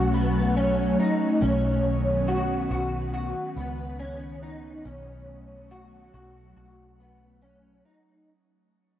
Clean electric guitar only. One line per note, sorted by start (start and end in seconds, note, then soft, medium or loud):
0.00 0.14 F#4 medium
0.14 0.56 B3 medium
0.57 0.99 C#4 medium
0.99 1.42 D#4 medium
1.42 2.28 C#4 medium
2.28 2.70 F#4 medium
2.71 3.13 F#4 medium
3.14 3.56 F#4 medium
3.57 3.99 B3 medium
3.99 4.42 C#4 medium
4.43 4.85 D#4 medium
4.85 5.71 C#4 medium
5.71 6.13 F#4 medium
6.14 6.55 F#4 medium
6.56 6.99 F#4 medium
7.00 7.42 B3 medium
7.42 7.85 C#4 medium
7.85 8.28 D#4 medium